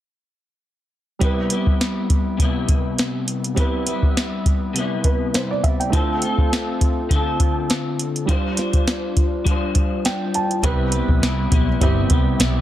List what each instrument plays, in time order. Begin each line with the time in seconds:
1.19 clean electric guitar C3 G3 B3 E4, upright piano G3 C4 E4, kick, closed hi-hat
1.24 upright piano B4
1.50 clean electric guitar G3 B3 E4, closed hi-hat
1.67 kick
1.81 snare, closed hi-hat
2.10 kick, closed hi-hat
2.38 clean electric guitar C3 G3, kick, closed hi-hat
2.42 clean electric guitar B3 E4
2.68 kick, closed hi-hat
2.99 snare, closed hi-hat
3.28 closed hi-hat
3.44 closed hi-hat
3.55 clean electric guitar C3 G3 B3 E4, upright piano G3 C4 E4, kick, closed hi-hat
3.60 upright piano B4
3.86 clean electric guitar G3 B3 E4, closed hi-hat
4.03 kick
4.17 snare, closed hi-hat
4.46 kick, closed hi-hat
4.74 clean electric guitar C3 G3, closed hi-hat
4.78 clean electric guitar B3 E4
5.04 upright piano B4, kick, closed hi-hat
5.34 upright piano C5, snare, closed hi-hat
5.51 upright piano D5
5.63 upright piano E5, kick, closed hi-hat
5.80 upright piano G5, closed hi-hat
5.90 clean electric guitar D3 C4, upright piano A3 D4 F4, kick, closed hi-hat
5.94 clean electric guitar F4 A4, upright piano C5
6.22 clean electric guitar C4 F4 A4, closed hi-hat
6.38 kick
6.53 snare, closed hi-hat
6.81 kick, closed hi-hat
7.09 clean electric guitar D3 C4, kick, closed hi-hat
7.14 clean electric guitar F4 A4
7.40 kick, closed hi-hat
7.70 snare, closed hi-hat
8.00 closed hi-hat
8.16 closed hi-hat
8.25 upright piano G3 D4 F4, clean electric guitar G3 D4 F4, kick, closed hi-hat
8.30 clean electric guitar C5, upright piano C5
8.57 clean electric guitar D4 F4 C5, snare, closed hi-hat
8.73 kick, closed hi-hat
8.88 snare, closed hi-hat
9.16 kick, closed hi-hat
9.45 clean electric guitar G3 D4, kick, closed hi-hat
9.49 clean electric guitar F4 C5
9.75 kick, closed hi-hat
10.05 upright piano G5, snare, closed hi-hat
10.34 upright piano A5, closed hi-hat
10.51 closed hi-hat
10.63 picked electric bass C2, clean electric guitar C3 G3 B3 E4, upright piano G3 C4 E4 B4, kick, closed hi-hat
10.92 clean electric guitar G3 B3 E4, closed hi-hat
11.08 picked electric bass B1, kick
11.22 picked electric bass C2, clean electric guitar C3 G3 B3 E4, snare, closed hi-hat
11.51 picked electric bass B1, clean electric guitar G3 B3 E4, kick, closed hi-hat
11.81 picked electric bass G1, clean electric guitar C3 G3 B3 E4, upright piano G3 C4 E4 G4, kick, closed hi-hat
12.10 picked electric bass C2, clean electric guitar G3 B3 E4, kick, closed hi-hat
12.39 picked electric bass B1, clean electric guitar C3 G3 B3 E4, snare, closed hi-hat